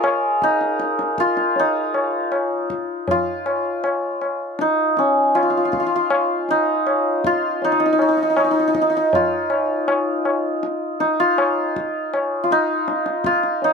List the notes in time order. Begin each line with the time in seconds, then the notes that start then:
Already playing: F4 G#4 A#4 C#5 D#5
0.04 tabla na
0.42 D#4, tabla ke
0.61 tabla te
0.80 tabla te
0.99 tabla te
1.18 F4, tabla ke
1.37 tabla te
1.56 D#4, tabla tin
1.94 tabla na
2.32 tabla na
2.70 tabla ke
3.08 F4, tabla tin, tabla ge
3.46 tabla na
3.84 tabla na
4.21 tabla na
4.59 D#4, tabla te
4.97 C#4, tabla te
5.35 F4, tabla na
5.43 F4
5.50 F4
5.57 F4
5.65 F4
5.72 F4, tabla ke
5.80 F4
5.87 F4
5.96 F4
6.10 tabla na
6.49 D#4, tabla te
6.87 tabla na
7.24 F4, tabla ke
7.62 D#4, tabla tin
7.72 D#4
7.80 D#4
7.86 D#4
7.93 D#4
7.99 D#4, tabla na
8.09 D#4
8.17 D#4
8.23 D#4
8.30 D#4
8.37 D#4, tabla na
8.44 D#4
8.51 D#4
8.59 D#4
8.68 D#4
8.74 D#4, tabla ke
8.82 D#4
8.90 D#4
8.97 D#4
9.13 F4, tabla tin, tabla ge
9.50 tabla na
9.88 tabla na
10.25 tabla na
10.63 tabla te
11.00 D#4, tabla te
11.20 F4
11.38 tabla na
11.76 tabla ke
12.14 tabla na
12.44 F4
12.51 D#4, tabla te
12.88 tabla te
13.06 tabla te
13.24 F4, tabla ke
13.43 tabla te
13.62 D#4, tabla tin